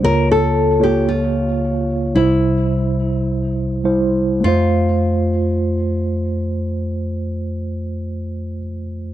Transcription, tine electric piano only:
X:1
M:4/4
L:1/16
Q:1/4=51
K:F
V:1 name="Tine electric piano"
[B,F_d]3 [B,Fd]4- [B,Fd] [G,Ec]6 [G,Ec]2 | [A,Fc]16 |]
V:2 name="Tine electric piano" clef=bass
[_D,,_D,]8 [C,,C,]8 | F,,16 |]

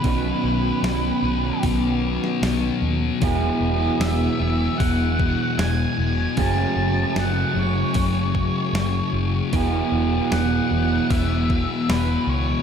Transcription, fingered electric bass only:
X:1
M:4/4
L:1/8
Q:1/4=76
K:E
V:1 name="Fingered electric bass" clef=bass
B,,, B,,, B,,, B,,, B,,,2 B,,, D,, | E,,, E,,, E,,, E,,, E,,,2 E,,, E,,, | F,,, F,,, F,,, F,,, F,,,2 F,,, F,,, | E,,, E,,, E,,, E,,, E,,,2 E,,, C,, |]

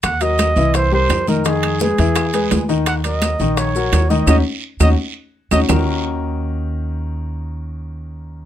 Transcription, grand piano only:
X:1
M:4/4
L:1/8
Q:1/4=170
K:Ebm
V:1 name="Grand piano"
z [G,GB]2 [_F,_F_f]2 [=G,=GB]2 [E,Ee] | [E,Ee]2 [A,Ac] [_F,_F_f]2 [^G,^G=B]2 [E,Ee]- | [E,Ee] [G,GB]2 [E,Ee]2 [G,GB]2 [E,Ee] | [DEG] z2 [DEG] z3 [DEG] |
[E,B,DEGB]8- | [E,B,DEGB]8 |]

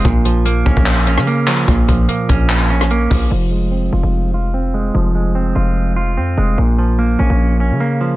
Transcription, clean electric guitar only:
X:1
M:4/4
L:1/8
Q:1/4=147
K:Fm
V:1 name="Clean electric guitar"
B,, F, B, D2 D B, F, | B,, F, B, D2 D B, F, | F, A, C F2 F C A, | F, A, C F2 F C A, |
B,, F, B, D2 D B, F, |]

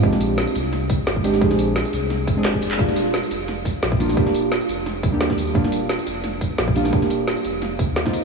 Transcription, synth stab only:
X:1
M:4/4
L:1/16
Q:"Swing 16ths" 1/4=174
K:Eb
V:1 name="Synth stab"
[A,CDG]12- [A,CDG]2 [A,CDG]2 | [A,CDA]8- [A,CDA]2 z [A,CDA]4- [A,CDA] | [G,B,DF]12- [G,B,DF]2 [G,B,DF]2 | [G,B,DG]8- [G,B,DG]2 z [G,B,DG]4- [G,B,DG] |
[G,B,DF]12- [G,B,DF]2 [G,B,DF]2 | [G,B,DG]8- [G,B,DG]2 z3 [B,CEF]3 |]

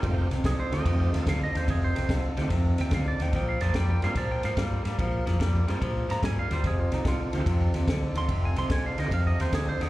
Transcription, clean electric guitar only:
X:1
M:4/4
L:1/8
Q:"Swing" 1/4=145
K:Bb
V:1 name="Clean electric guitar" clef=bass
[F,,C,] [F,,C,] [F,,D,] [F,,D,] [F,,C,] [F,,C,] [F,,D,] [F,,D,] | [F,,C,] [F,,C,] [F,,D,] [F,,D,] [F,,C,] [F,,C,] [F,,D,] [F,,D,] | [B,,F,] [B,,F,] [B,,G,] [B,,G,] [B,,F,] [B,,F,] [B,,G,] [B,,G,] | [B,,F,] [B,,F,] [B,,G,] [B,,G,] [B,,F,] [B,,F,] [B,,G,] [B,,G,] |
[F,,C,] [F,,C,] [F,,D,] [F,,D,] [F,,C,] [F,,C,] [F,,D,] [F,,D,] | [F,,C,] [F,,C,] [F,,D,] [F,,D,] [F,,C,] [F,,C,] [F,,D,] [F,,D,] |]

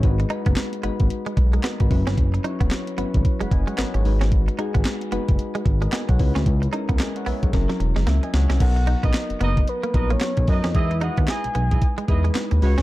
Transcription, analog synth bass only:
X:1
M:4/4
L:1/16
Q:"Swing 16ths" 1/4=112
K:G#m
V:1 name="Analog synth bass" clef=bass
G,,,2 z F,,, z2 G,,, G,,, z2 B,,,2 z G,,, F,,, =G,,, | F,,,2 z E,,, z2 G,,, G,,, z F,,, F,,, z G,,, G,,, G,,,2- | G,,,2 z G,,, z2 F,,, F,,, z2 G,,,2 z B,,, C,, =D,, | C,,2 z C,, z2 B,,, B,,, F,,, z E,,, F,,, C,, z C,, ^B,,, |
B,,,3 A,,, z F,,, F,,,2 z2 A,,,2 z B,,, F,, ^E,, | E,,3 D,, z B,,, B,,,2 z2 E,,2 z D,, C,, =D,, |]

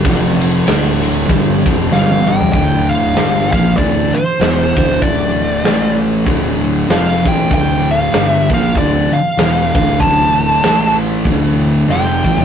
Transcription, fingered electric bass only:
X:1
M:4/4
L:1/8
Q:"Swing" 1/4=96
K:Dm
V:1 name="Fingered electric bass" clef=bass
F,,,2 D,,,2 G,,, F,,, G,,,2 | D,,,2 G,,, B,,, D,,, z E,,, D,,,- | D,,,2 A,,,2 D,,,2 F,,, A,,, | D,,,2 G,,, B,,, D,,, z E,,, D,,,- |
D,,,2 A,,,2 D,,,2 F,,, A,,, |]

